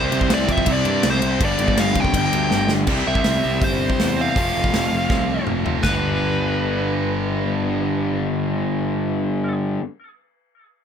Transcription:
0.00 1.40 C3 loud
0.00 1.41 G3 loud
0.00 1.41 C4 loud
0.00 1.41 E4 loud
0.00 0.34 C5 medium
0.12 0.28 C2 loud
0.12 crash medium
0.21 kick medium
0.30 0.46 C2 loud
0.30 0.52 D5 medium
0.30 snare loud
0.30 crash medium
0.48 0.64 F2 loud
0.48 0.70 E5 medium
0.48 kick medium
0.48 crash medium
0.58 kick medium
0.66 0.83 C2 loud
0.66 kick loud
0.66 crash medium
0.72 1.08 D5 loud
0.85 1.02 G2 loud
0.85 crash medium
1.03 1.20 C2 medium
1.03 snare loud
1.03 crash loud
1.10 1.42 C5 loud
1.22 1.38 C2 medium
1.22 crash medium
1.40 1.57 G1 medium
1.40 2.87 G2 loud
1.40 2.87 D3 loud
1.40 2.88 G3 loud
1.40 2.88 B3 loud
1.40 2.88 D4 loud
1.40 kick loud
1.40 crash loud
1.45 1.81 D5 loud
1.59 1.76 G1 loud
1.59 crash medium
1.68 kick medium
1.78 1.94 G1 loud
1.78 2.00 F5 loud
1.78 snare loud
1.78 crash loud
1.95 2.11 C2 medium
1.95 kick medium
1.95 crash medium
2.00 2.72 G5 loud
2.05 kick medium
2.13 2.30 G1 loud
2.13 kick loud
2.13 crash medium
2.33 2.49 D2 medium
2.33 crash medium
2.51 2.68 G1 medium
2.51 snare medium
2.68 2.87 G1 medium
2.68 snare loud
2.87 3.02 C2 medium
2.87 4.35 C3 medium
2.87 4.35 G3 medium
2.87 4.36 C4 medium
2.87 kick loud
2.87 crash loud
2.91 4.36 E4 loud
3.07 3.20 C2 medium
3.07 3.64 E5 medium
3.15 kick medium
3.24 3.39 C2 loud
3.24 snare loud
3.24 open hi-hat medium
3.45 3.58 C2 medium
3.62 3.89 G1 medium
3.62 4.20 C5 medium
3.62 kick loud
3.62 open hi-hat medium
3.90 kick medium
4.00 4.27 E2 medium
4.00 snare loud
4.00 open hi-hat medium
4.17 4.35 C3 medium
4.17 4.36 G3 medium
4.17 4.35 C4 medium
4.21 5.45 F5 medium
4.35 4.50 F1 medium
4.35 5.63 F2 medium
4.35 5.64 C3 loud
4.35 5.82 F3 medium
4.35 5.83 A3 medium
4.35 5.83 C4 loud
4.35 5.84 F4 medium
4.35 kick loud
4.35 open hi-hat medium
4.55 4.69 F1 medium
4.64 kick medium
4.73 4.87 F1 medium
4.73 snare loud
4.73 open hi-hat medium
4.93 5.06 F1 medium
5.10 5.37 C2 medium
5.10 kick loud
5.10 snare medium
5.47 5.74 F1 medium
5.47 mid tom medium
5.64 5.82 F2 medium
5.64 5.83 C3 medium
5.64 5.82 F3 medium
5.64 floor tom medium
5.83 9.77 G1 medium
5.83 9.80 G2 medium
5.83 9.81 D3 medium
5.83 9.82 G3 medium
5.83 9.84 B3 medium
5.83 9.55 B4 medium
5.83 kick medium
5.83 snare medium
5.83 ride bell medium
5.87 9.84 D4 loud

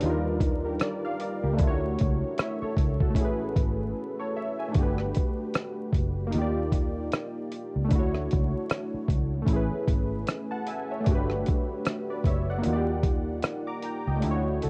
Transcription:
0.00 0.77 D#2 loud
0.00 1.53 G3 medium
0.00 1.55 D4 medium
0.00 1.57 D#4 medium
0.00 0.24 B4 medium
0.00 0.23 D5 medium
0.00 closed hi-hat medium
0.06 1.59 F4 medium
0.06 0.44 A#4 medium
0.40 kick loud
0.40 closed hi-hat medium
0.65 0.81 G4 medium
0.65 0.80 A#4 medium
0.80 1.03 A#4 medium
0.80 1.03 D5 medium
0.80 cross-stick loud
0.80 closed hi-hat medium
1.05 1.20 D5 medium
1.05 1.20 F5 medium
1.20 1.42 A#4 medium
1.20 1.42 D5 medium
1.20 closed hi-hat medium
1.43 1.58 C#2 medium
1.43 1.81 G4 medium
1.43 1.81 A#4 medium
1.53 3.09 A3 medium
1.53 3.13 D4 medium
1.59 1.95 D2 loud
1.59 3.15 E4 medium
1.59 kick loud
1.59 closed hi-hat medium
1.64 1.69 F4 medium
1.64 2.02 C#5 medium
1.71 2.04 F#4 medium
1.99 2.21 C#2 medium
1.99 kick medium
1.99 closed hi-hat medium
2.38 2.61 C#5 medium
2.38 2.61 E5 medium
2.38 cross-stick loud
2.38 closed hi-hat medium
2.62 3.00 A4 medium
2.62 2.99 C#5 medium
2.62 muted fingered electric bass stroke soft
2.77 3.16 C#2 medium
2.77 kick medium
2.77 closed hi-hat medium
3.01 3.39 F#4 medium
3.01 3.39 A4 medium
3.01 kick medium
3.10 4.67 A3 medium
3.10 4.70 C#4 medium
3.15 3.52 A1 loud
3.15 4.72 E4 medium
3.15 kick medium
3.15 closed hi-hat medium
3.21 3.97 G#4 medium
3.21 3.99 B4 medium
3.56 3.92 G#1 medium
3.56 kick medium
3.56 closed hi-hat medium
4.19 4.35 A4 medium
4.19 4.35 C#5 medium
4.36 4.58 C#5 medium
4.36 4.58 E5 medium
4.59 4.97 E5 medium
4.59 4.97 G#5 medium
4.68 6.27 A3 medium
4.68 6.28 D4 medium
4.74 5.11 G1 loud
4.74 6.30 F#4 medium
4.74 kick loud
4.74 closed hi-hat medium
4.79 6.32 G4 medium
4.79 6.34 B4 medium
4.98 cross-stick soft
5.15 kick medium
5.15 closed hi-hat medium
5.54 cross-stick loud
5.54 closed hi-hat medium
5.93 6.36 F#1 medium
5.93 kick medium
5.93 closed hi-hat medium
6.27 7.85 A#3 medium
6.27 7.87 D#4 medium
6.32 7.09 D#2 medium
6.32 7.89 F4 medium
6.32 closed hi-hat medium
6.38 7.90 G4 medium
6.38 7.92 D5 medium
6.72 kick medium
6.72 closed hi-hat medium
7.12 cross-stick loud
7.12 closed hi-hat medium
7.51 closed hi-hat medium
7.76 7.90 C#2 medium
7.84 9.41 A3 medium
7.84 9.44 D4 medium
7.90 8.27 D2 loud
7.90 9.46 E4 medium
7.90 kick loud
7.90 closed hi-hat medium
7.95 9.48 F#4 medium
7.95 9.50 C#5 medium
8.14 cross-stick soft
8.31 8.53 C#2 medium
8.31 kick medium
8.31 closed hi-hat medium
8.70 cross-stick loud
8.70 closed hi-hat medium
8.94 muted fingered electric bass stroke soft
9.08 9.45 C#2 medium
9.08 kick medium
9.08 closed hi-hat medium
9.42 10.99 A3 medium
9.42 11.02 C#4 medium
9.47 9.69 A1 loud
9.47 11.04 E4 medium
9.47 kick medium
9.47 closed hi-hat medium
9.53 11.06 G#4 medium
9.53 11.08 B4 medium
9.88 10.24 G#1 medium
9.88 kick loud
9.88 closed hi-hat medium
10.27 cross-stick loud
10.27 closed hi-hat medium
10.51 10.67 F#5 medium
10.51 10.67 A5 medium
10.67 10.89 E5 medium
10.67 10.89 G#5 medium
10.67 closed hi-hat medium
10.91 11.28 C#5 medium
10.91 11.28 E5 medium
11.00 12.58 A3 medium
11.00 12.60 D4 medium
11.06 11.43 G1 loud
11.06 12.62 F#4 medium
11.06 kick loud
11.06 closed hi-hat medium
11.11 12.64 G4 medium
11.11 11.50 B4 medium
11.30 cross-stick soft
11.46 kick medium
11.46 closed hi-hat medium
11.85 cross-stick loud
11.85 closed hi-hat medium
12.10 12.25 B4 medium
12.10 12.25 D5 medium
12.24 12.61 F#1 loud
12.24 12.48 C#5 medium
12.24 12.48 E5 medium
12.24 kick medium
12.24 closed hi-hat medium
12.50 12.71 D5 medium
12.50 12.87 F#5 medium
12.58 14.16 A#3 medium
12.58 14.18 D#4 medium
12.63 13.40 D#2 loud
12.63 14.20 F4 medium
12.63 closed hi-hat medium
12.69 12.75 F#4 medium
12.69 13.46 D5 medium
12.76 14.25 G4 medium
13.03 kick loud
13.03 closed hi-hat medium
13.43 cross-stick loud
13.43 closed hi-hat medium
13.67 13.82 A#5 medium
13.67 13.83 D6 medium
13.83 14.06 G5 medium
13.83 14.05 A#5 medium
13.83 closed hi-hat medium
14.07 14.22 C#2 loud
14.07 14.45 D#5 soft
14.07 14.44 G5 medium
14.16 14.70 A3 medium
14.16 14.70 D4 medium
14.22 14.59 D2 loud
14.22 14.70 E4 medium
14.22 closed hi-hat medium
14.27 14.33 F4 medium
14.27 14.66 C#5 medium
14.34 14.62 F#4 medium
14.62 14.70 C#2 medium
14.62 14.70 F#4 medium
14.62 14.70 A4 medium
14.62 closed hi-hat medium

